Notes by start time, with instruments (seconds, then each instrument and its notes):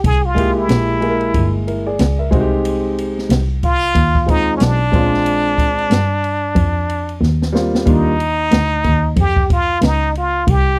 0.04 double bass C2, muted trumpet G#4, kick, ride
0.26 muted trumpet F4
0.35 upright piano G#3 A#3 E4 G4, kick, ride
0.58 muted trumpet E4
0.69 double bass A#1, snare, hi-hat pedal, ride
1.00 upright piano G#3 A#3 E4 G#4, ride
1.10 upright piano A#4
1.21 ride
1.34 double bass G1, kick, ride
1.67 upright piano E4 A#4, ride
1.87 upright piano G#4 D5
1.99 double bass C#2, snare, hi-hat pedal, ride
2.19 upright piano A#4 E5
2.31 double bass C2, upright piano G#3 C4 D#4 F#4, kick, ride
2.40 upright piano G4
2.65 ride
2.98 ride
3.19 snare
3.30 double bass C2, snare, hi-hat pedal, ride
3.63 muted trumpet F4, kick, ride
3.82 ride
3.95 double bass D#2, kick, ride
4.15 kick
4.26 upright piano G#3 C4 D#4 F4, muted trumpet D#4, kick, ride
4.57 double bass B1, muted trumpet C#4, hi-hat pedal, ride
4.62 muted trumpet D4, snare
4.92 double bass A#1, upright piano G#3 C4 C#4 F4, kick, ride
5.01 upright piano D4
5.14 snare
5.26 ride
5.58 kick, ride
5.79 ride
5.91 double bass G2, snare, hi-hat pedal, ride
6.24 ride
6.56 double bass F2, kick, ride
6.89 ride
7.09 ride
7.21 double bass D#2, snare
7.42 snare
7.52 upright piano G3 A#3 C4 F4, snare
7.75 snare
7.85 double bass D#2, upright piano G3 A#3 D4 F4, kick, ride
7.89 muted trumpet D#4
8.20 ride
8.51 double bass D2, snare, hi-hat pedal, ride
8.84 double bass D#2, kick, ride
9.16 double bass F2, muted trumpet G4, kick, ride
9.36 kick
9.50 muted trumpet F4, kick, ride
9.81 double bass C#2, muted trumpet D#4, snare, hi-hat pedal, ride
10.15 muted trumpet F4, ride
10.47 double bass C2, muted trumpet G4, kick, ride